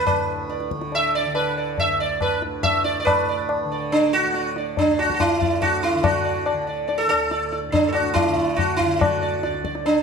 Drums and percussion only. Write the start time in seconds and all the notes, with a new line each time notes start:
0.07 tabla na, tabla ge
0.50 tabla te
0.60 tabla te
0.71 tabla ke
0.81 tabla te
0.92 tabla tin
1.35 tabla na
1.78 tabla tin, tabla ge
2.21 tabla na, tabla ge
2.42 tabla te
2.63 tabla na, tabla ge
2.85 tabla te
3.07 tabla na, tabla ge
3.49 tabla na
3.92 tabla tin
4.34 tabla te
4.56 tabla te
4.77 tabla tin, tabla ge
4.99 tabla na
5.10 tabla ke
5.20 tabla na, tabla ge
5.42 tabla ge
5.62 tabla na, tabla ge
5.83 tabla te
6.04 tabla na, tabla ge
6.46 tabla na
6.89 tabla tin
7.10 tabla na
7.31 tabla te
7.53 tabla te
7.74 tabla tin, tabla ge
7.95 tabla na
8.16 tabla na, tabla ge
8.37 tabla ge
8.58 tabla na, tabla ge
8.80 tabla ge
9.01 tabla na, tabla ge
9.43 tabla te
9.54 tabla te
9.65 tabla ke
9.75 tabla te
9.86 tabla tin